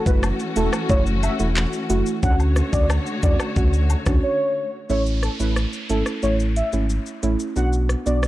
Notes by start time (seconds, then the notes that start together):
Already playing: E3 A3 C#4 F#4
0.06 F#1 A3 E4 F#4 B4, kick, shaker
0.23 cross-stick, high woodblock, shaker
0.40 shaker
0.56 E1 A3 E4 F#4 A4, closed hi-hat, cabasa, shaker
0.73 cross-stick, high woodblock, shaker
0.89 F#1 A3 E4 F#4 C#5, kick, shaker
1.06 shaker
1.23 E5, closed hi-hat, cabasa, high woodblock, shaker
1.40 E1 A3 E4 F#4, shaker
1.56 clap, shaker
1.73 shaker
1.89 F#1 A3 E4 F#4, closed hi-hat, cabasa, shaker
2.06 shaker
2.23 D2 D3 A3 C#4 D4 F#4 C#5 F#5, kick, shaker
2.40 high woodblock, shaker
2.56 cross-stick, closed hi-hat, cabasa, shaker
2.73 D2 C#4 D4 F#4 D5, kick, shaker
2.90 cross-stick, high woodblock, shaker
3.06 shaker
3.23 E2 C#4 D4 F#4 D5, kick, closed hi-hat, cabasa, shaker
3.40 cross-stick, high woodblock, shaker
3.56 D2 C#4 D4 F#4, kick, shaker
3.73 shaker
3.90 closed hi-hat, cabasa, high woodblock, shaker
4.06 D2 C#4 D4 F#4, kick, cross-stick, shaker
4.23 C#5
4.90 A1 A3 C#4 E4 C#5, downlifter, shaker
5.06 shaker
5.23 A4, cross-stick, closed hi-hat, shaker
5.40 A1 A3 C#4 E4 B4, shaker
5.56 cross-stick, shaker
5.73 shaker
5.90 G#1 A3 C#4 E4 A4, closed hi-hat, shaker
6.06 cross-stick, shaker
6.23 A1 A3 C#4 E4 C#5, shaker
6.40 shaker
6.56 E5, closed hi-hat, shaker
6.73 G#1 A3 C#4 E4, shaker
6.90 shaker
7.06 shaker
7.23 A1 A3 C#4 E4, closed hi-hat, shaker
7.40 shaker
7.56 B1 B3 D4 F#4 F#5, shaker
7.73 shaker
7.89 cross-stick, closed hi-hat, shaker
8.06 B1 B3 D4 F#4 D5, shaker
8.23 cross-stick, shaker